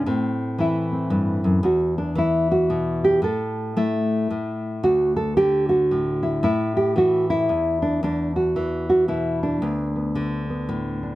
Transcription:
0.06 A2 C4
0.59 E3 E4
0.92 C4
1.10 G2
1.44 F#2
1.63 E2 F#4
1.98 D4
2.15 E3 E4
2.52 F#4
2.70 B2
3.04 G4
3.22 A2 A4
3.77 A3 E4
4.31 A2
4.83 D2 F#4
5.16 A4
5.37 D3 G4
5.69 F#4
5.91 A2
6.23 E4
6.43 A2 E4
6.77 G4
6.96 E3 F#4
7.30 E4
7.49 E2
7.82 D4
8.03 E2 D4
8.36 F#4
8.56 E3
8.89 F#4
9.08 B2 E4
9.43 D4
9.62 D2 B3
9.96 B3
10.15 D3
10.50 B3
10.69 A2
11.03 D4

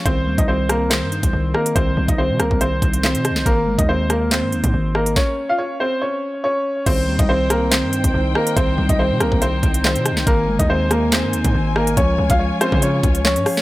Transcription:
0.05 C2 D#3 C4 C5, kick, closed hi-hat
0.27 D#2 G3
0.38 C2 D#4 D#5, kick, closed hi-hat
0.48 D#3 C4 C5
0.69 A#3 C4 A#4, cross-stick, closed hi-hat
0.90 D#3 C4 C5, snare, clap, closed hi-hat
1.02 G2
1.12 D#4, closed hi-hat
1.23 C2, kick, closed hi-hat
1.33 C2 D#3
1.54 A#3 A#4 D#5, cross-stick
1.66 closed hi-hat
1.76 C2 D#3 C4 C5, kick, closed hi-hat
1.97 C2 G3
2.08 C2 D#4 D#5, kick, closed hi-hat
2.18 D#3 C4 C5
2.30 C3
2.39 C2 A#3 C4 A#4, cross-stick, closed hi-hat
2.51 C2, kick
2.61 D#3 C4 C5, closed hi-hat
2.82 C2 D#4, kick, closed hi-hat
2.93 closed hi-hat
3.03 D#3 C4 C5, snare, clap
3.15 C3, closed hi-hat
3.25 D#5, cross-stick, closed hi-hat
3.30 C2
3.36 snare
3.45 G#1 D#3 A#3 A#4, kick, closed hi-hat
3.67 G1 G#3
3.78 D#2 D#4 D#5, kick, closed hi-hat
3.89 D#3 C4 C5
4.10 A#3 A#4, cross-stick, closed hi-hat
4.31 D#3 C4 C5, snare, clap, closed hi-hat
4.42 G#2
4.52 D#2 D#4, closed hi-hat
4.64 G#2, kick, closed hi-hat
4.73 G#1 D#3
4.95 A#3 A#4 D#5, cross-stick
5.06 closed hi-hat
5.16 C#4 C#5, kick, snare
5.49 F4 F5
5.58 C#4 C#5
5.80 C4 C5
6.02 C#4 C#5
6.44 C#4 C#5
6.86 C2 D#3 C4 D#4 C5 G5, kick, closed hi-hat, crash
7.08 D#2 G3
7.19 C2 D#4 D#5, kick, closed hi-hat
7.29 D#3 C4 C5
7.50 A#3 C4 A#4, cross-stick, closed hi-hat
7.71 D#3 C4 C5, snare, clap, closed hi-hat
7.83 G2
7.93 D#4, closed hi-hat
8.04 C2, kick, closed hi-hat
8.14 C2 D#3
8.35 A#3 A#4 D#5, cross-stick
8.47 closed hi-hat
8.56 C2 D#3 C4 C5, kick, closed hi-hat
8.78 C2 G3
8.89 C2 D#4 D#5, kick, closed hi-hat
8.99 D#3 C4 C5
9.10 C3
9.20 C2 A#3 C4 A#4, cross-stick, closed hi-hat
9.32 C2, kick
9.42 D#3 C4 C5, closed hi-hat
9.63 C2 D#4, kick, closed hi-hat
9.74 closed hi-hat
9.84 D#3 C4 C5, snare, clap
9.96 C3, closed hi-hat
10.05 D#5, cross-stick, closed hi-hat
10.11 C2
10.17 snare
10.26 G#1 D#3 A#3 A#4 G#5, kick, closed hi-hat
10.48 G1 G#3
10.59 D#2 D#4 D#5, kick, closed hi-hat
10.70 D#3 C4 C5
10.91 A#3 A#4, cross-stick, closed hi-hat
11.12 D#3 C4 C5, snare, clap, closed hi-hat
11.23 G#2
11.33 D#2 D#4, closed hi-hat
11.44 G#2, kick, closed hi-hat
11.54 G#1 D#3
11.76 A#3 A#4 D#5, cross-stick
11.87 closed hi-hat
11.97 C#2 F3 C#4 F4 C#5, kick, closed hi-hat
12.18 C#2 G#3
12.30 C#2 F4 F5, kick, closed hi-hat
12.39 F3 C#4 C#5
12.61 C4 C#4 C5, cross-stick, closed hi-hat
12.72 C#3, kick
12.82 F3 C#4 C#5, closed hi-hat
13.03 C#2 F4, kick, closed hi-hat
13.15 closed hi-hat
13.24 F3 C#4 C#5, snare, clap
13.36 G#2, closed hi-hat
13.46 F5, cross-stick, open hi-hat
13.57 snare

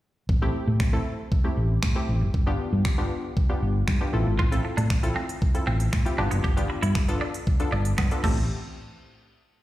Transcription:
0.29 A1, kick
0.42 A3 C4 E4 G4
0.67 A2
0.80 A1, finger snap, kick
0.93 A3 C4 E4 A4
1.32 kick
1.44 A3 C4 E4 G4
1.57 A1
1.83 A2, finger snap, kick
1.95 A3 C4 E4 G4
2.09 A1
2.21 F#1
2.34 G1, kick
2.46 B3 D4 F4 G4
2.73 G2
2.85 G1, finger snap, kick
2.98 B3 D4 F4 G4
3.37 kick
3.49 B3 D4 F4 G4
3.62 G1
3.88 G2, finger snap, kick
4.01 B3 D4 F4 G4
4.13 A1 C4 E4 F4 A4
4.27 G#1
4.39 A1 F4, kick
4.52 C4 E4 F4 A4, closed hi-hat
4.65 muted clean electric guitar stroke
4.77 A2 D4, closed hi-hat
4.90 A1, finger snap, kick
5.03 C4 E4 F4 A4, closed hi-hat
5.16 C4
5.29 closed hi-hat
5.42 kick
5.54 C4 E4 F4 A4, closed hi-hat
5.67 A1 C4
5.80 closed hi-hat
5.93 A2, finger snap, muted clean electric guitar stroke, kick
6.05 C4 E4 F4 G4, closed hi-hat
6.18 G1 B3 D4 F4 G4
6.31 F#1 B3, closed hi-hat
6.44 G1 G4, kick
6.57 B3 D4 F4 G4, closed hi-hat
6.70 muted clean electric guitar stroke
6.83 G2 E4, closed hi-hat
6.95 G1, finger snap, kick
7.08 B3 D4 F4 A4, closed hi-hat
7.21 D4
7.34 closed hi-hat
7.47 kick
7.60 B3 D4 F4 A4, closed hi-hat
7.72 G1 D4
7.85 closed hi-hat
7.98 G2 B3, finger snap, kick
8.11 B3 D4 F4 A4, closed hi-hat
8.24 A1 A3 C4 E4 G4, kick, crash

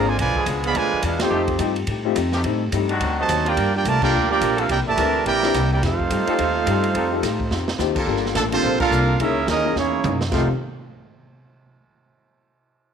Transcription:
Already playing: G#1 D3 A#3 C4 G#4
0.07 D3 F3 G#3 F4 C5 D5 G#5
0.18 B1 B2 D3 F3 G#3 D4 F4 B4 D5 G#5, kick, ride
0.35 F3 B3 D4 G#4, muted upright bass stroke, kick
0.46 C#2 B2 F3 G#3 D4, kick, hi-hat pedal, ride
0.64 F3 G#3 B3 G#4 D5 F5 B5, ride
0.74 D2 B2 D3 F3 G#3 D4 F4 B4 D5 G#5, kick, ride
0.93 muted upright bass stroke
1.02 E2 B2 F3 G#3 D4 F4 G#4 B4 F5, kick, hi-hat pedal, ride
1.19 A3 C4 D#4 F4 G4 A4 C5 G5, snare, ride
1.30 F2 F3 A3 D#4 G4
1.48 kick, ride
1.58 G2 F3 A3 C4 D#4 F4 G4, hi-hat pedal, ride
1.76 ride
1.87 A2 F3 A3 D#4 G4, kick, ride
2.05 A3 C4 D#4 F4 G4
2.15 F2 F3 A3 D#4 G4, kick, hi-hat pedal, ride
2.32 D#3 A3 C4 G4, snare
2.44 A2 G3 A3 C4 D#4 G4 A4, kick, ride
2.72 G2 A2 G3 A3 C4 D#4 G4 C5, kick, hi-hat pedal, ride
2.89 D#3 C4 D4 F#4, ride
3.00 D2 D3 F#3 C4, kick, ride
3.04 D#4
3.19 C3 F#3 A3 F#4 C5 D#5 A5
3.28 D#2 D3 F#3 C4 D#4, kick, hi-hat pedal, ride
3.45 F3 A#3 D4 F4 G4 A#4 D5 G5, ride
3.56 G2 F3 A#3, kick, ride
3.61 D4
3.74 A#3 D4 F4 G4 A#4 D5 G5
3.85 C2 G2 F3 A3 A#3 D4 F4 A#4 D5 A5, kick, hi-hat pedal, ride
4.02 A#3 D4 F4 G4 A4 A#4 D5 G5, kick, crash
4.13 D2 G2 F3 A#3
4.17 D4
4.29 F3 A#3 D4 F4 G4 A#4 D5 G5
4.41 A#1 G2 F3 A#3 D4, kick, hi-hat pedal, ride
4.56 E3 A#3 C4 D4 F4 A4 F5, ride
4.60 D4 G4 A#4
4.69 C2 C3 E3 A#3 D4 E4 G4 A#4 D5 G5, kick, ride
4.80 A#1
4.87 G1 A#2 E3 A3 G4 D5 E5 A5
4.96 D2 C3 E3 A#3 C4 D4 E4 G4 A#4, kick, hi-hat pedal, ride
5.26 A#1 C3 E3 A#3 E4 G4 A#4 D5 G5, kick, ride
5.30 D4
5.43 E3 C4 D4 E4 G4 A#4, snare
5.54 C2 C3 E3 A#3 D4, kick, hi-hat pedal, ride
5.72 A#3 E4 G4 A#4 D5 G5
5.82 F2 F3 A3 C4 D#4 F4 G4 A4 C5 F5, kick, snare, ride
5.99 kick
6.10 G2 F3 A3 D#4 G4, kick, hi-hat pedal, ride
6.27 G3 C4 D#4 F4 G4 A4, muted upright bass stroke, ride
6.38 D#2 F3 A3 D#4 G4, kick, ride
6.66 G2 F3 G3 A3 C4 D#4 F4 G4 A4 C5, kick, hi-hat pedal, ride
6.84 ride
6.94 F2 F3 G3 A3 D#4 F4 G4 A4, kick, ride
7.12 C4 D#4 F4 G4 A4
7.23 A2 F3 A3 D#4 G4, kick, snare, hi-hat pedal, ride
7.40 kick
7.50 F2 F3 A3 D#4 G4, snare
7.68 snare
7.78 D#2 F3 A3 C4 D#4 F4 G4 C5, snare, hi-hat pedal
7.96 G3 A#3 F4 A4, kick, crash
8.07 G1 G3 A#3 D4 F4 G4 A4, kick
8.16 snare
8.26 snare
8.35 A1 D3 F3 G3 A3 A#3 D4 F4 A4, kick, snare, hi-hat pedal, ride
8.51 D3 F3 A#3 C4 D4 F4 G4 A4 C5, ride
8.63 A#1 G3 A#3 F4 A4, kick
8.80 A#3 D4 F4 A4 A#4 F5, kick, crash
8.90 C2 G3 A#3 F4 A4, hi-hat pedal
9.19 F#2 E3 A#3 C#4 D#4 E4 G#4 A#4 E5, kick, ride
9.46 D#2 F#2 E3 A#3 D#4 G#4 A#4, kick, snare, hi-hat pedal, ride
9.50 C#4 D#5
9.64 A#3 C#4 D#4 E4 G#4
9.75 E2 F#2 E3 A#3 C#4 D#4 E4 G#4 C#5, snare
10.04 F#2 E3 A#3 D#4, hi-hat pedal, mid tom
10.21 snare
10.32 F1 F2 C3 D#3 F3 A3 C4 D#4 F4 G4 A4 C5 F5, kick, snare, crash

